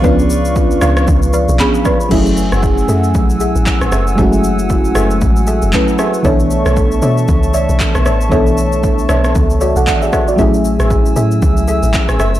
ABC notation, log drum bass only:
X:1
M:4/4
L:1/16
Q:"Swing 16ths" 1/4=116
K:F#m
V:1 name="Log drum bass" clef=bass
C,,6 C,,2 C,,3 B,,, z4 | F,,,3 F,,,3 F,,2 B,,,3 A,,, z A,,, F,,,2 | F,,,6 F,,,2 A,,,3 F,,, z4 | B,,,3 B,,,3 B,,2 C,,3 B,,, z B,,, A,,,2 |
B,,,6 B,,,2 C,,3 B,,, z4 | A,,,3 A,,,3 A,,2 C,,3 A,,, z A,,, F,,,2 |]